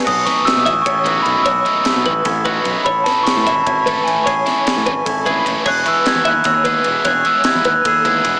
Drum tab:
CC |x------|-------|-------|-------|
RD |-xxxxxx|xxxxxxx|xxxxxxx|xxxxxxx|
SD |-oo----|--o-o--|-oo----|-oo----|
BD |oo-ooo-|o--oooo|oo-ooo-|o--oooo|

CC |x------|-------|
RD |-xxxxxx|xxxxxxx|
SD |--o-o--|--o----|
BD |oo-ooo-|o--oooo|